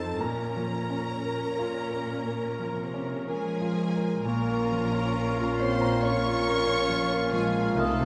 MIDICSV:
0, 0, Header, 1, 12, 480
1, 0, Start_track
1, 0, Key_signature, -5, "minor"
1, 0, Tempo, 1061947
1, 92, Time_signature, 4, 2, 24, 8
1, 571, Tempo, 996678
1, 2011, Tempo, 882353
1, 4076, End_track
2, 0, Start_track
2, 0, Title_t, "Flute"
2, 0, Program_c, 0, 73
2, 2015, Note_on_c, 0, 85, 49
2, 3911, Note_off_c, 0, 85, 0
2, 3931, Note_on_c, 0, 87, 60
2, 4076, Note_off_c, 0, 87, 0
2, 4076, End_track
3, 0, Start_track
3, 0, Title_t, "Violin section"
3, 0, Program_c, 1, 48
3, 1542, Note_on_c, 1, 80, 71
3, 1993, Note_off_c, 1, 80, 0
3, 2015, Note_on_c, 1, 82, 66
3, 2739, Note_off_c, 1, 82, 0
3, 2741, Note_on_c, 1, 84, 74
3, 2976, Note_on_c, 1, 85, 98
3, 2977, Note_off_c, 1, 84, 0
3, 3689, Note_off_c, 1, 85, 0
3, 3689, Note_on_c, 1, 80, 68
3, 3926, Note_on_c, 1, 81, 65
3, 3927, Note_off_c, 1, 80, 0
3, 4076, Note_off_c, 1, 81, 0
3, 4076, End_track
4, 0, Start_track
4, 0, Title_t, "Oboe"
4, 0, Program_c, 2, 68
4, 2021, Note_on_c, 2, 77, 60
4, 4076, Note_off_c, 2, 77, 0
4, 4076, End_track
5, 0, Start_track
5, 0, Title_t, "Violin section"
5, 0, Program_c, 3, 48
5, 0, Note_on_c, 3, 81, 52
5, 89, Note_off_c, 3, 81, 0
5, 95, Note_on_c, 3, 82, 55
5, 1542, Note_off_c, 3, 82, 0
5, 1543, Note_on_c, 3, 68, 54
5, 1994, Note_off_c, 3, 68, 0
5, 2006, Note_on_c, 3, 70, 58
5, 2720, Note_off_c, 3, 70, 0
5, 2740, Note_on_c, 3, 72, 73
5, 2976, Note_off_c, 3, 72, 0
5, 2979, Note_on_c, 3, 73, 77
5, 3690, Note_off_c, 3, 73, 0
5, 3694, Note_on_c, 3, 68, 58
5, 3934, Note_off_c, 3, 68, 0
5, 3938, Note_on_c, 3, 69, 61
5, 4076, Note_off_c, 3, 69, 0
5, 4076, End_track
6, 0, Start_track
6, 0, Title_t, "Clarinet"
6, 0, Program_c, 4, 71
6, 2014, Note_on_c, 4, 65, 50
6, 4076, Note_off_c, 4, 65, 0
6, 4076, End_track
7, 0, Start_track
7, 0, Title_t, "Viola section"
7, 0, Program_c, 5, 48
7, 0, Note_on_c, 5, 60, 43
7, 0, Note_on_c, 5, 69, 41
7, 82, Note_off_c, 5, 69, 0
7, 83, Note_off_c, 5, 60, 0
7, 94, Note_on_c, 5, 61, 37
7, 94, Note_on_c, 5, 70, 40
7, 1908, Note_off_c, 5, 61, 0
7, 1908, Note_off_c, 5, 70, 0
7, 2014, Note_on_c, 5, 65, 54
7, 2015, Note_on_c, 5, 61, 54
7, 2955, Note_off_c, 5, 61, 0
7, 2955, Note_off_c, 5, 65, 0
7, 2981, Note_on_c, 5, 61, 54
7, 2981, Note_on_c, 5, 65, 56
7, 3915, Note_off_c, 5, 65, 0
7, 3916, Note_off_c, 5, 61, 0
7, 3925, Note_on_c, 5, 63, 59
7, 3925, Note_on_c, 5, 65, 58
7, 4076, Note_off_c, 5, 63, 0
7, 4076, Note_off_c, 5, 65, 0
7, 4076, End_track
8, 0, Start_track
8, 0, Title_t, "Grand piano"
8, 0, Program_c, 6, 0
8, 0, Control_c, 6, 64, 127
8, 0, Note_on_c, 6, 41, 44
8, 0, Note_on_c, 6, 53, 41
8, 0, Note_on_c, 6, 63, 39
8, 0, Note_on_c, 6, 69, 39
8, 0, Note_on_c, 6, 81, 57
8, 0, Note_on_c, 6, 84, 64
8, 71, Note_off_c, 6, 63, 0
8, 73, Note_off_c, 6, 69, 0
8, 78, Note_off_c, 6, 41, 0
8, 79, Note_off_c, 6, 81, 0
8, 84, Note_on_c, 6, 46, 46
8, 94, Note_on_c, 6, 82, 54
8, 103, Control_c, 6, 64, 0
8, 105, Note_off_c, 6, 53, 0
8, 106, Note_off_c, 6, 84, 0
8, 186, Control_c, 6, 64, 127
8, 255, Note_on_c, 6, 53, 40
8, 408, Note_on_c, 6, 61, 39
8, 509, Note_off_c, 6, 53, 0
8, 558, Note_on_c, 6, 70, 38
8, 665, Note_off_c, 6, 61, 0
8, 728, Note_on_c, 6, 65, 45
8, 826, Note_off_c, 6, 70, 0
8, 883, Note_on_c, 6, 70, 37
8, 992, Note_off_c, 6, 65, 0
8, 1036, Note_off_c, 6, 46, 0
8, 1050, Note_on_c, 6, 58, 34
8, 1149, Note_off_c, 6, 70, 0
8, 1213, Note_on_c, 6, 53, 36
8, 1312, Note_off_c, 6, 58, 0
8, 1379, Note_on_c, 6, 61, 39
8, 1473, Note_off_c, 6, 53, 0
8, 1522, Note_off_c, 6, 82, 0
8, 1545, Note_on_c, 6, 70, 34
8, 1636, Note_off_c, 6, 61, 0
8, 1703, Note_on_c, 6, 65, 37
8, 1800, Note_off_c, 6, 70, 0
8, 1870, Note_on_c, 6, 70, 44
8, 1953, Note_off_c, 6, 65, 0
8, 2010, Note_on_c, 6, 46, 56
8, 2017, Note_off_c, 6, 70, 0
8, 2022, Control_c, 6, 64, 0
8, 2125, Control_c, 6, 64, 127
8, 2134, Note_on_c, 6, 58, 46
8, 2265, Note_on_c, 6, 53, 48
8, 2332, Note_off_c, 6, 58, 0
8, 2375, Note_on_c, 6, 61, 48
8, 2456, Note_off_c, 6, 53, 0
8, 2504, Note_on_c, 6, 70, 44
8, 2569, Note_off_c, 6, 61, 0
8, 2624, Note_on_c, 6, 65, 60
8, 2692, Note_off_c, 6, 70, 0
8, 2744, Note_on_c, 6, 73, 46
8, 2811, Note_off_c, 6, 65, 0
8, 2859, Note_on_c, 6, 82, 49
8, 2931, Note_off_c, 6, 73, 0
8, 2978, Note_on_c, 6, 73, 55
8, 3048, Note_off_c, 6, 82, 0
8, 3101, Note_on_c, 6, 65, 52
8, 3166, Note_off_c, 6, 73, 0
8, 3217, Note_on_c, 6, 70, 56
8, 3286, Note_off_c, 6, 65, 0
8, 3327, Note_on_c, 6, 61, 50
8, 3403, Note_off_c, 6, 70, 0
8, 3446, Note_on_c, 6, 53, 48
8, 3518, Note_off_c, 6, 61, 0
8, 3571, Note_on_c, 6, 58, 49
8, 3639, Note_off_c, 6, 53, 0
8, 3684, Note_on_c, 6, 53, 58
8, 3763, Note_off_c, 6, 58, 0
8, 3806, Note_on_c, 6, 58, 46
8, 3881, Note_off_c, 6, 53, 0
8, 3909, Note_off_c, 6, 46, 0
8, 3920, Note_on_c, 6, 36, 58
8, 3930, Note_off_c, 6, 58, 0
8, 3943, Control_c, 6, 64, 0
8, 4032, Control_c, 6, 64, 127
8, 4052, Note_on_c, 6, 48, 52
8, 4076, Note_off_c, 6, 36, 0
8, 4076, Note_off_c, 6, 48, 0
8, 4076, End_track
9, 0, Start_track
9, 0, Title_t, "Bassoon"
9, 0, Program_c, 7, 70
9, 2013, Note_on_c, 7, 58, 54
9, 3910, Note_off_c, 7, 58, 0
9, 3929, Note_on_c, 7, 57, 58
9, 4076, Note_off_c, 7, 57, 0
9, 4076, End_track
10, 0, Start_track
10, 0, Title_t, "French horn section"
10, 0, Program_c, 8, 60
10, 1541, Note_on_c, 8, 56, 58
10, 1993, Note_off_c, 8, 56, 0
10, 2015, Note_on_c, 8, 58, 68
10, 2733, Note_on_c, 8, 60, 69
10, 2739, Note_off_c, 8, 58, 0
10, 2968, Note_off_c, 8, 60, 0
10, 2976, Note_on_c, 8, 61, 72
10, 3685, Note_on_c, 8, 56, 66
10, 3689, Note_off_c, 8, 61, 0
10, 3926, Note_on_c, 8, 57, 65
10, 3930, Note_off_c, 8, 56, 0
10, 4076, Note_off_c, 8, 57, 0
10, 4076, End_track
11, 0, Start_track
11, 0, Title_t, "Cello section"
11, 0, Program_c, 10, 48
11, 0, Note_on_c, 10, 41, 53
11, 80, Note_off_c, 10, 41, 0
11, 91, Note_on_c, 10, 46, 46
11, 524, Note_off_c, 10, 46, 0
11, 566, Note_on_c, 10, 46, 45
11, 1279, Note_off_c, 10, 46, 0
11, 1300, Note_on_c, 10, 48, 44
11, 1540, Note_off_c, 10, 48, 0
11, 1541, Note_on_c, 10, 53, 51
11, 2012, Note_off_c, 10, 53, 0
11, 2015, Note_on_c, 10, 46, 55
11, 3911, Note_off_c, 10, 46, 0
11, 3934, Note_on_c, 10, 48, 59
11, 4076, Note_off_c, 10, 48, 0
11, 4076, End_track
12, 0, Start_track
12, 0, Title_t, "Double bass section"
12, 0, Program_c, 11, 48
12, 2014, Note_on_c, 11, 34, 56
12, 3911, Note_off_c, 11, 34, 0
12, 3928, Note_on_c, 11, 36, 65
12, 4076, Note_off_c, 11, 36, 0
12, 4076, End_track
0, 0, End_of_file